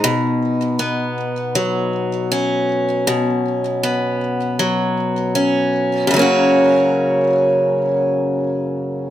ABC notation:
X:1
M:4/4
L:1/8
Q:"Swing 16ths" 1/4=79
K:F#
V:1 name="Steel-string acoustic guitar" clef=bass
B,,2 B,2 F,2 C2 | B,,2 B,2 F,2 C2 | [F,,C,F,A,CF]8 |]